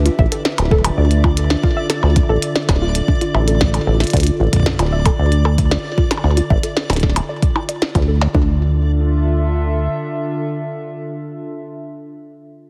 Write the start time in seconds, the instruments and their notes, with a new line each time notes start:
Already playing: ambient pad D3 D4 G4 B4 E5, synth texture D5
0.06 synth arpeggio sound F4, ambient pad F4, closed hi-hat
0.19 acid bass A1, synth arpeggio sound E5, kick
0.32 synth arpeggio sound A4, closed hi-hat
0.41 ambient pad A4
0.45 snare
0.58 acid bass D1, closed hi-hat, percussion blips
0.71 synth arpeggio sound A4, kick
0.85 closed hi-hat, percussion blips
0.98 acid bass D2, synth arpeggio sound D5
1.11 closed hi-hat
1.24 synth arpeggio sound F4, kick, percussion blips
1.37 closed hi-hat
1.50 synth arpeggio sound D4, snare
1.63 synth arpeggio sound F4, kick
1.77 synth arpeggio sound E5
1.90 synth arpeggio sound A4, snare, closed hi-hat
2.03 acid bass D2, percussion blips
2.16 kick, closed hi-hat
2.29 acid bass A1, synth arpeggio sound A4
2.42 closed hi-hat
2.56 synth arpeggio sound D5, snare
2.69 acid bass D1, kick, snare, closed hi-hat, percussion blips
2.82 synth arpeggio sound F4
2.95 closed hi-hat
3.08 synth arpeggio sound D4, kick
3.21 synth arpeggio sound F4, closed hi-hat
3.35 acid bass A1, synth arpeggio sound E5, percussion blips
3.48 synth arpeggio sound A4, closed hi-hat
3.61 kick, snare
3.74 closed hi-hat, percussion blips
3.87 acid bass A1, synth arpeggio sound A4
4.00 snare, closed hi-hat
4.04 closed hi-hat
4.07 closed hi-hat
4.10 closed hi-hat
4.13 acid bass D2, synth arpeggio sound D5, kick, closed hi-hat
4.17 closed hi-hat
4.20 closed hi-hat
4.23 closed hi-hat
4.27 closed hi-hat
4.40 acid bass A1, synth arpeggio sound F4
4.53 kick, closed hi-hat
4.56 kick
4.60 kick
4.63 kick, snare
4.66 synth arpeggio sound D4, kick
4.69 kick
4.73 kick
4.76 acid bass D1, synth arpeggio sound F4, kick, closed hi-hat, percussion blips
4.92 synth arpeggio sound E5
5.06 synth arpeggio sound A4, kick, closed hi-hat, percussion blips
5.19 acid bass D2
5.32 closed hi-hat
5.45 synth arpeggio sound A4, percussion blips
5.58 kick, closed hi-hat
5.71 synth arpeggio sound D5, snare
5.98 synth arpeggio sound F4, kick
6.11 snare, closed hi-hat, percussion blips
6.17 percussion blips
6.24 acid bass D2, synth arpeggio sound D4, percussion blips
6.31 percussion blips
6.37 synth arpeggio sound F4, closed hi-hat
6.50 acid bass A1, synth arpeggio sound E5, kick
6.63 synth arpeggio sound A4, closed hi-hat
6.77 snare
6.90 acid bass D1, snare, closed hi-hat, percussion blips
6.93 snare, closed hi-hat
6.96 closed hi-hat
7.00 synth arpeggio sound A4, kick, snare, closed hi-hat
7.10 snare
7.16 closed hi-hat, percussion blips
7.29 synth arpeggio sound D5
7.42 kick, closed hi-hat
7.55 synth arpeggio sound E4, percussion blips
7.69 synth arpeggio sound D5, closed hi-hat
7.82 synth arpeggio sound E4, snare
7.95 acid bass D2, synth arpeggio sound F4, kick, closed hi-hat, percussion blips
8.08 synth arpeggio sound A4
8.21 snare
8.34 acid bass D2, ambient pad D3, synth arpeggio sound D4, kick
8.42 ambient pad D4
8.50 ambient pad F4
8.58 ambient pad A4
8.66 ambient pad E5